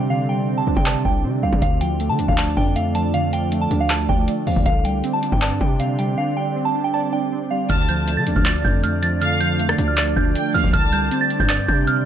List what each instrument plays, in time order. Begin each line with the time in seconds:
Already playing: 808-style bass C3, synth keys D3 G3 C4 D4 D5, ambient pad C4 D4 G4 D5
0.10 synth keys D3, synth bell F5
0.29 synth keys G3, synth bell G5
0.48 synth keys C4
0.58 synth bell A5
0.67 808-style bass C2, synth keys D4
0.77 808-style bass C3, synth bell G5, kick
0.86 synth keys D5, synth bell A5, clap
1.05 808-style bass C2, synth keys D4, synth bell G5, kick
1.24 808-style bass C3, synth keys C4
1.43 808-style bass C2, synth keys G3, synth bell F5
1.53 808-style bass C3, kick
1.62 808-style bass D2, synth keys D3, ambient pad A3 F4, synth bell F5, kick, closed hi-hat
1.81 synth keys F3, synth bell G5, closed hi-hat
2.00 synth keys A3, closed hi-hat
2.09 808-style bass D3, synth bell A5
2.19 808-style bass D2, synth keys D4, closed hi-hat
2.28 808-style bass D2, synth bell F5, kick
2.38 synth keys D5, synth bell A5, clap, closed hi-hat
2.57 808-style bass F2, synth keys D4, synth bell G5, kick
2.76 synth keys A3, synth bell F5, closed hi-hat
2.95 synth keys F3, synth bell A5, closed hi-hat
3.14 synth keys D3, synth bell F5, closed hi-hat
3.33 synth keys F3, synth bell G5, closed hi-hat
3.52 synth keys A3, closed hi-hat
3.61 synth bell A5
3.71 808-style bass D2, synth keys D4, closed hi-hat
3.80 synth bell F5
3.90 synth keys D5, synth bell A5, clap, closed hi-hat
4.09 808-style bass D2, synth keys D4, synth bell G5, kick
4.28 synth keys A3, closed hi-hat
4.47 808-style bass D2, synth keys F3, synth bell F5, open hi-hat
4.56 808-style bass D2, kick
4.66 808-style bass C2, synth keys D3, ambient pad C4 D4 G4, synth bell F5, kick, closed hi-hat
4.85 synth keys G3, synth bell G5, closed hi-hat
5.04 synth keys C4, closed hi-hat
5.13 synth bell A5
5.23 synth keys D4, closed hi-hat
5.32 808-style bass G2, synth bell G5, kick
5.42 synth keys D5, synth bell A5, clap, closed hi-hat
5.61 808-style bass C3, synth keys D4, synth bell G5, kick
5.80 synth keys C4, synth bell F5, closed hi-hat
5.99 synth keys G3, synth bell G5, closed hi-hat
6.18 synth keys D3, synth bell F5
6.37 synth keys G3, synth bell G5
6.56 synth keys C4
6.65 synth bell A5
6.75 synth keys D4
6.84 synth bell G5
6.94 synth keys D5, synth bell A5
7.13 synth keys D4, synth bell G5
7.32 synth keys C4
7.51 synth keys G3, synth bell F5
7.70 808-style bass D2, synth keys D3, ambient pad A3 D4 F4 D5, violin section A5, synth bell F6, kick, closed hi-hat, crash
7.88 synth keys F3, synth bell G6, closed hi-hat
8.08 synth keys A3, closed hi-hat
8.17 808-style bass D3, synth bell A6
8.27 808-style bass D2, synth keys D4, closed hi-hat
8.36 808-style bass D2, synth bell F6, kick
8.45 synth keys D5, synth bell A6, clap, closed hi-hat
8.64 808-style bass F2, synth keys D4, synth bell G6, kick
8.83 synth keys A3, synth bell F6, closed hi-hat
9.02 synth keys F3, synth bell A6, closed hi-hat
9.21 synth keys D3, violin section F5, synth bell F6, closed hi-hat
9.40 synth keys F3, synth bell G6, closed hi-hat
9.60 synth keys A3, closed hi-hat
9.69 synth bell A6, cross-stick
9.78 808-style bass D2, synth keys D4, closed hi-hat
9.88 synth bell F6
9.97 synth keys D5, synth bell A6, clap, closed hi-hat
10.16 808-style bass D2, synth keys D4, synth bell G6, kick
10.35 synth keys A3, violin section G5, closed hi-hat
10.54 808-style bass D2, synth keys F3, violin section F5, synth bell F6, open hi-hat
10.64 808-style bass D2, kick
10.73 808-style bass C2, synth keys D3, ambient pad C4 G4, violin section A5, synth bell F6, kick, closed hi-hat
10.92 synth keys G3, synth bell G6, closed hi-hat
11.11 synth keys C4, closed hi-hat
11.21 synth bell A6
11.30 synth keys D4, closed hi-hat
11.40 808-style bass G2, synth bell G6, kick
11.49 synth keys D5, synth bell A6, clap, closed hi-hat
11.68 808-style bass C3, synth keys D4, synth bell G6, kick
11.87 synth keys C4, synth bell F6, closed hi-hat